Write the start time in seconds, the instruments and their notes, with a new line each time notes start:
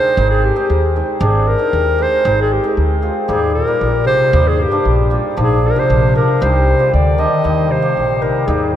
Already playing: hammered dulcimer G#3, clarinet C5
0.17 upright bass G#1, hammered dulcimer G#3 C4 D#4
0.30 clarinet G#4
0.45 clarinet G4
0.56 hammered dulcimer G#3 C4 D#4
0.70 upright bass D#2
0.96 hammered dulcimer G#3 C4 D#4
1.20 upright bass G#1, hammered dulcimer G#3 C4 D4, clarinet G#4
1.48 clarinet A#4
1.58 hammered dulcimer G#3 C4 D#4
1.73 upright bass D#2
1.98 hammered dulcimer G#3 C4 D#4, clarinet C5
2.25 upright bass G#1, hammered dulcimer G#3 C4 D#4
2.41 clarinet G#4
2.52 clarinet G4
2.64 hammered dulcimer G#3 C4 D#4
2.77 upright bass D2
3.02 hammered dulcimer G#3 C4 F4
3.28 upright bass D#2, bass clarinet G#2, hammered dulcimer G3 A#3 D#4, clarinet G#4
3.54 bass clarinet A#2, clarinet A#4
3.67 hammered dulcimer G3 A#3 D#4
3.81 upright bass A#1, bass clarinet A#2
4.05 bass clarinet C3, hammered dulcimer G3 A#3 D#4, clarinet C5
4.33 upright bass D#2, hammered dulcimer G3 A#3 D#4
4.43 bass clarinet G#2
4.48 clarinet G#4
4.57 bass clarinet G2
4.62 clarinet G4
4.71 hammered dulcimer G3 A#3 D4
4.82 upright bass A#1, bass clarinet G2
5.10 hammered dulcimer G3 A#3 F4
5.35 upright bass A#1, bass clarinet G#2, hammered dulcimer F3 A#3 D4
5.42 clarinet G#4
5.61 bass clarinet A#2
5.67 clarinet A#4
5.74 bass clarinet C3, hammered dulcimer F3 A#3 D4
5.79 clarinet C5
5.90 upright bass A#1
6.15 hammered dulcimer F3 A#3 D4, clarinet A#4
6.40 upright bass C2, bass clarinet C3, hammered dulcimer G3 C4 D#4, clarinet C5
6.79 hammered dulcimer G3 C4 F4
6.92 upright bass D2, bass clarinet D3, clarinet D5
7.17 bass clarinet D#3, hammered dulcimer G3 C4 D4, clarinet D#5
7.43 upright bass D#2, hammered dulcimer G3 A#3 D#4
7.69 bass clarinet C3, clarinet C5
7.82 hammered dulcimer G3 A#3 C4
7.97 upright bass A#1, bass clarinet C3
8.22 hammered dulcimer G3 A#3 D#4, clarinet A#4
8.47 upright bass D#2, bass clarinet G#2, hammered dulcimer G3 A#3 D#4, clarinet G#4